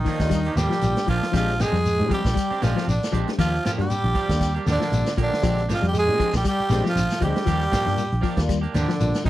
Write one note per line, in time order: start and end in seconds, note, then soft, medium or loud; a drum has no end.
0.00 0.54 D#3 medium
0.00 0.61 D#3 medium
0.00 0.59 D#4 medium
0.05 0.21 D#3 medium
0.05 0.22 F3 medium
0.05 0.23 A#3 medium
0.05 0.23 D4 medium
0.05 muted clean electric guitar stroke medium
0.05 kick medium
0.05 snare soft
0.05 open hi-hat medium
0.05 shekere soft
0.20 0.48 D#2 medium
0.20 0.40 G3 medium
0.20 0.40 A#3 medium
0.20 0.40 D4 medium
0.20 0.40 F4 medium
0.20 kick medium
0.20 snare medium
0.20 closed hi-hat soft
0.20 shekere medium
0.30 0.46 G3 medium
0.30 kick medium
0.30 closed hi-hat medium
0.30 shekere medium
0.45 0.56 A#3 soft
0.45 0.57 D4 soft
0.45 0.57 G4 soft
0.45 closed hi-hat soft
0.56 0.67 D#2 medium
0.56 0.72 F3 medium
0.56 1.08 G3 medium
0.56 1.09 G3 loud
0.56 0.71 A#3 medium
0.56 0.71 D4 medium
0.56 1.08 G4 loud
0.56 snare medium
0.56 closed hi-hat medium
0.56 shekere medium
0.70 0.86 F3 medium
0.70 0.86 A#3 soft
0.70 0.86 D4 soft
0.70 0.85 G4 soft
0.70 snare medium
0.70 shekere soft
0.81 0.93 A#1 medium
0.81 1.00 G3 medium
0.81 1.00 A#3 medium
0.81 1.00 D4 medium
0.81 1.00 F4 medium
0.81 closed hi-hat medium
0.81 shekere medium
0.96 snare medium
0.96 closed hi-hat soft
0.96 shekere medium
1.07 1.19 A#1 medium
1.07 1.23 F3 medium
1.07 1.32 F3 medium
1.07 1.25 F3 medium
1.07 1.25 A#3 medium
1.07 1.25 D4 medium
1.07 1.33 F4 loud
1.07 1.25 G4 medium
1.07 kick medium
1.07 open hi-hat medium
1.11 1.34 F3 medium
1.23 snare medium
1.32 1.64 A#1 medium
1.32 1.48 F3 medium
1.32 1.57 F3 medium
1.32 1.62 F3 medium
1.32 1.54 G#3 medium
1.32 1.50 G#3 medium
1.32 1.50 C4 medium
1.32 1.54 C4 medium
1.32 1.54 D4 medium
1.32 1.50 D4 medium
1.32 1.50 G4 medium
1.32 1.54 G4 medium
1.32 kick loud
1.32 closed hi-hat medium
1.32 shekere medium
1.37 1.63 F4 loud
1.48 closed hi-hat soft
1.48 shekere soft
1.59 2.10 G#3 medium
1.59 1.76 G#3 medium
1.59 2.11 G#3 medium
1.59 1.76 C4 medium
1.59 1.76 D4 medium
1.59 1.76 G4 medium
1.59 2.12 G#4 loud
1.59 snare medium
1.59 closed hi-hat medium
1.59 shekere medium
1.72 2.02 F2 medium
1.72 1.89 G3 medium
1.72 snare soft
1.72 closed hi-hat soft
1.72 shekere soft
1.85 closed hi-hat medium
1.85 shekere medium
1.98 2.08 A#2 medium
1.98 2.18 G#3 medium
1.98 2.18 C4 medium
1.98 2.19 D4 medium
1.98 2.18 G4 medium
1.98 closed hi-hat soft
2.07 2.25 F3 medium
2.07 2.56 G3 medium
2.07 2.26 G#3 medium
2.07 2.27 C4 medium
2.07 2.27 D4 medium
2.07 2.27 G4 medium
2.07 kick medium
2.07 closed hi-hat medium
2.12 2.64 G3 medium
2.12 2.65 G4 medium
2.12 shekere soft
2.25 2.34 A#1 medium
2.25 kick medium
2.25 snare medium
2.25 shekere medium
2.34 2.50 G3 medium
2.34 kick medium
2.34 closed hi-hat medium
2.34 shekere medium
2.50 2.61 C4 soft
2.50 2.61 D4 soft
2.50 2.61 G4 medium
2.50 muted fingered electric bass stroke soft
2.50 closed hi-hat soft
2.60 2.73 A#1 medium
2.60 2.86 F3 medium
2.60 2.88 F3 medium
2.60 2.76 G#3 medium
2.60 2.79 G#3 medium
2.60 2.79 C4 medium
2.60 2.76 C4 medium
2.60 2.76 D4 medium
2.60 2.79 D4 medium
2.60 2.88 F4 medium
2.60 2.76 G4 medium
2.60 2.79 G4 medium
2.60 snare medium
2.60 closed hi-hat medium
2.60 shekere medium
2.75 2.91 F3 medium
2.75 2.91 C4 soft
2.75 2.91 D4 soft
2.75 2.90 G4 soft
2.75 snare medium
2.75 shekere soft
2.86 2.98 A#1 loud
2.86 3.10 D3 medium
2.86 3.12 D3 medium
2.86 3.12 D4 medium
2.86 snare soft
2.86 closed hi-hat medium
2.86 shekere medium
3.03 snare medium
3.03 closed hi-hat soft
3.03 shekere medium
3.12 3.24 A#1 medium
3.12 3.28 F3 medium
3.12 3.29 G#3 medium
3.12 3.34 G#3 medium
3.12 3.29 C4 medium
3.12 3.34 C4 medium
3.12 3.29 D4 medium
3.12 3.34 D4 medium
3.12 3.29 G4 medium
3.12 3.34 G4 medium
3.12 kick medium
3.12 closed hi-hat medium
3.28 snare medium
3.28 closed hi-hat soft
3.37 3.58 D#2 loud
3.37 3.61 F3 medium
3.37 3.54 F3 medium
3.37 3.55 F3 medium
3.37 3.55 A#3 medium
3.37 3.55 D4 medium
3.37 3.63 F4 loud
3.37 3.55 G4 medium
3.37 kick medium
3.37 snare soft
3.37 closed hi-hat medium
3.37 shekere medium
3.42 3.64 F3 medium
3.55 shekere soft
3.64 3.70 F3 medium
3.64 3.80 F3 medium
3.64 3.72 F3 medium
3.64 3.81 A#3 medium
3.64 3.81 D4 medium
3.64 3.72 F4 medium
3.64 3.81 G4 medium
3.64 snare medium
3.64 closed hi-hat soft
3.64 shekere medium
3.78 3.87 G2 medium
3.78 3.94 G3 medium
3.78 4.62 G3 medium
3.78 3.93 G3 medium
3.78 4.63 G3 medium
3.78 3.93 A#3 medium
3.78 3.93 D4 medium
3.78 3.93 F4 medium
3.78 4.63 G4 medium
3.78 closed hi-hat soft
3.78 shekere soft
3.90 closed hi-hat medium
3.90 shekere medium
4.04 4.12 A#1 loud
4.04 closed hi-hat soft
4.14 4.31 F3 medium
4.14 4.31 D4 medium
4.14 4.31 G4 medium
4.14 muted clean electric guitar stroke medium
4.14 kick medium
4.14 closed hi-hat medium
4.14 shekere soft
4.29 4.57 D#2 medium
4.29 4.49 G3 medium
4.29 4.49 A#3 medium
4.29 4.49 D4 medium
4.29 4.49 F4 medium
4.29 kick medium
4.29 snare medium
4.29 closed hi-hat soft
4.29 shekere medium
4.41 muted clean electric guitar stroke medium
4.41 kick medium
4.41 closed hi-hat medium
4.41 shekere medium
4.54 4.66 A#3 soft
4.54 4.66 D4 soft
4.54 4.66 G4 medium
4.54 closed hi-hat soft
4.66 4.77 D#2 medium
4.66 5.13 D3 medium
4.66 5.15 D3 medium
4.66 4.80 F3 medium
4.66 4.79 D4 medium
4.66 4.78 G4 medium
4.66 muted clean electric guitar stroke medium
4.66 snare medium
4.66 closed hi-hat soft
4.66 shekere medium
4.71 5.16 D4 medium
4.79 4.95 F3 medium
4.79 4.95 A#3 soft
4.79 4.94 D4 soft
4.79 muted clean electric guitar stroke medium
4.79 snare medium
4.79 shekere soft
4.91 5.02 A#1 medium
4.91 5.09 G3 medium
4.91 5.09 A#3 medium
4.91 5.09 D4 medium
4.91 5.09 F4 medium
4.91 closed hi-hat medium
4.91 shekere medium
5.06 snare medium
5.06 closed hi-hat soft
5.06 shekere medium
5.17 5.28 A#1 loud
5.17 5.65 D3 medium
5.17 5.67 D3 medium
5.17 5.33 F3 medium
5.17 5.34 A#3 medium
5.17 5.34 G4 medium
5.17 kick medium
5.17 closed hi-hat medium
5.23 5.68 D4 loud
5.34 snare medium
5.41 5.73 A#1 loud
5.41 5.59 F3 medium
5.41 5.63 G#3 medium
5.41 5.59 G#3 medium
5.41 5.63 C4 medium
5.41 5.59 C4 medium
5.41 5.63 D4 medium
5.41 5.59 D4 medium
5.41 5.63 G4 medium
5.41 5.60 G4 medium
5.41 kick loud
5.41 closed hi-hat medium
5.41 shekere medium
5.58 closed hi-hat soft
5.58 shekere soft
5.68 5.81 F3 medium
5.68 5.83 F3 medium
5.68 5.85 G#3 medium
5.68 5.85 C4 medium
5.68 5.85 D4 medium
5.68 5.85 G4 medium
5.68 snare medium
5.68 closed hi-hat medium
5.68 shekere loud
5.74 5.84 F4 medium
5.81 6.10 F2 loud
5.81 5.92 G3 medium
5.81 5.98 G3 medium
5.81 5.94 G3 medium
5.81 closed hi-hat soft
5.81 shekere soft
5.88 5.96 G4 medium
5.92 6.30 G#3 loud
5.92 snare soft
5.92 closed hi-hat medium
5.92 shekere medium
5.98 6.33 G#3 loud
5.98 6.33 G#4 loud
6.07 6.17 A#2 medium
6.07 6.27 G#3 medium
6.07 6.28 C4 medium
6.07 6.27 D4 medium
6.07 6.27 G4 medium
6.07 closed hi-hat soft
6.18 6.35 F3 medium
6.18 6.35 G#3 medium
6.18 6.36 C4 medium
6.18 6.36 D4 medium
6.18 kick medium
6.18 closed hi-hat medium
6.18 shekere soft
6.33 6.42 A#1 medium
6.33 6.42 G3 medium
6.33 6.46 G3 loud
6.33 6.46 G4 loud
6.33 kick medium
6.33 snare medium
6.33 shekere medium
6.44 6.81 G3 medium
6.44 6.60 G3 medium
6.44 kick medium
6.44 closed hi-hat medium
6.44 shekere medium
6.48 6.83 G3 medium
6.48 6.84 G4 loud
6.60 muted fingered electric bass stroke soft
6.60 closed hi-hat soft
6.69 6.81 A#1 medium
6.69 6.84 G#3 medium
6.69 6.88 G#3 medium
6.69 6.84 C4 medium
6.69 6.87 C4 medium
6.69 6.87 D4 medium
6.69 6.84 D4 medium
6.69 6.87 G4 medium
6.69 6.83 G4 medium
6.69 snare medium
6.69 closed hi-hat medium
6.69 shekere medium
6.84 7.00 F3 medium
6.84 7.19 F3 medium
6.84 6.99 C4 soft
6.84 6.99 D4 soft
6.84 6.99 G4 soft
6.84 snare medium
6.84 shekere soft
6.89 7.21 F3 medium
6.89 7.21 F4 loud
6.96 7.06 A#1 loud
6.96 snare soft
6.96 closed hi-hat medium
6.96 shekere medium
7.10 snare medium
7.10 closed hi-hat soft
7.10 shekere medium
7.21 7.32 D2 medium
7.21 7.36 F3 medium
7.21 8.44 G3 medium
7.21 7.37 G#3 medium
7.21 7.42 G#3 medium
7.21 7.38 C4 medium
7.21 7.42 C4 medium
7.21 7.38 D4 medium
7.21 7.43 D4 medium
7.21 7.42 G4 medium
7.21 7.38 G4 medium
7.21 8.45 G4 loud
7.21 kick medium
7.21 closed hi-hat medium
7.25 8.46 G3 medium
7.35 snare medium
7.35 closed hi-hat soft
7.45 7.67 D#2 medium
7.45 7.61 F3 medium
7.45 7.63 F3 medium
7.45 7.63 A#3 medium
7.45 7.63 D4 medium
7.45 7.64 G4 medium
7.45 kick medium
7.45 closed hi-hat medium
7.45 shekere medium
7.62 shekere soft
7.71 7.88 F3 medium
7.71 7.88 A#3 medium
7.71 7.89 D4 medium
7.71 7.89 G4 medium
7.71 kick medium
7.71 snare medium
7.71 closed hi-hat medium
7.71 shekere loud
7.85 7.96 G2 loud
7.85 8.01 G3 medium
7.85 8.02 G3 medium
7.85 8.01 A#3 medium
7.85 8.02 D4 medium
7.85 8.01 F4 loud
7.85 snare soft
7.85 closed hi-hat soft
7.85 shekere soft
7.97 closed hi-hat medium
7.97 shekere medium
8.12 8.21 A#1 loud
8.12 closed hi-hat soft
8.21 8.39 F3 medium
8.21 8.39 A#3 medium
8.21 8.39 D4 medium
8.21 8.40 G4 medium
8.21 kick medium
8.21 open hi-hat medium
8.21 shekere soft
8.37 8.66 D#2 medium
8.37 8.57 G3 medium
8.37 8.57 A#3 medium
8.37 8.57 D4 medium
8.37 8.57 F4 loud
8.37 kick medium
8.37 snare medium
8.37 closed hi-hat soft
8.37 shekere medium
8.49 8.65 G3 medium
8.49 kick medium
8.49 closed hi-hat medium
8.49 shekere medium
8.61 8.73 A#3 soft
8.61 8.73 D4 soft
8.61 8.74 G4 soft
8.61 closed hi-hat soft
8.74 8.85 D#2 medium
8.74 9.22 D3 medium
8.74 8.91 F3 medium
8.74 8.91 A#3 medium
8.74 9.22 D4 medium
8.74 8.91 D4 medium
8.74 8.91 G4 medium
8.74 snare medium
8.74 closed hi-hat medium
8.74 shekere medium
8.88 9.04 F3 medium
8.88 snare medium
8.88 shekere soft
9.00 9.11 A#1 loud
9.00 9.18 G3 medium
9.00 9.17 A#3 medium
9.00 9.18 D4 medium
9.00 9.18 F4 medium
9.00 closed hi-hat medium
9.00 shekere medium
9.14 snare medium
9.14 closed hi-hat soft
9.14 shekere medium
9.24 9.30 A#1 medium
9.24 9.30 D#3 medium
9.24 9.30 F3 medium
9.24 9.30 A#3 medium
9.24 9.30 D4 medium
9.24 9.30 D#4 medium
9.24 9.30 G4 medium
9.24 kick medium
9.24 open hi-hat medium